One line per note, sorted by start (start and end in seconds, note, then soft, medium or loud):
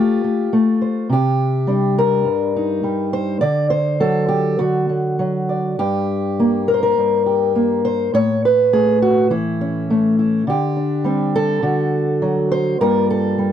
0.00 0.23 A3 medium
0.00 1.10 F4 medium
0.00 0.51 G4 medium
0.24 0.52 A3 soft
0.53 1.07 A3 medium
0.81 1.07 C5 soft
1.09 2.26 C3 medium
1.09 1.98 G4 medium
1.67 2.82 G3 medium
1.67 3.73 D4 soft
1.99 3.13 A#4 medium
2.25 3.41 G2 medium
2.56 3.40 D#4 soft
2.83 3.39 G3 medium
3.13 3.41 C5 medium
3.41 4.59 D3 medium
3.41 3.70 D5 loud
3.70 4.28 C5 medium
4.00 4.88 F#3 medium
4.00 4.89 A4 loud
4.29 4.59 G4 medium
4.59 5.75 D3 medium
4.59 5.78 F#4 medium
4.89 5.18 F#3 soft
5.19 5.75 F#3 medium
5.49 5.75 D5 soft
5.79 6.97 G2 medium
5.79 6.73 G4 medium
6.40 7.54 A#3 medium
6.68 6.81 A#4 medium
6.74 7.25 C5 medium
6.83 8.14 A#4 medium
6.98 8.13 G2 medium
7.26 7.84 G4 soft
7.55 8.10 A#3 medium
7.85 8.13 C5 loud
8.14 10.43 A2 medium
8.14 8.43 C#5 loud
8.45 9.31 B4 medium
8.73 9.89 A3 medium
8.73 9.01 G#4 loud
9.02 9.31 F#4 medium
9.30 10.43 E3 medium
9.30 10.18 E4 medium
9.61 10.44 C#4 soft
9.90 10.44 A3 medium
10.19 10.44 E4 soft
10.47 11.59 D3 medium
10.47 11.35 G4 medium
10.76 11.63 D4 soft
11.04 11.59 G3 medium
11.04 11.60 C4 soft
11.36 12.51 A4 loud
11.62 12.76 D3 medium
11.62 12.76 F#4 medium
12.22 12.76 F#3 medium
12.52 12.80 C5 loud
12.81 13.52 G2 medium
12.81 13.37 G3 medium
12.81 13.52 A#3 soft
12.81 13.52 F4 medium
12.81 13.10 A#4 loud
13.11 13.52 A4 medium
13.38 13.52 G3 medium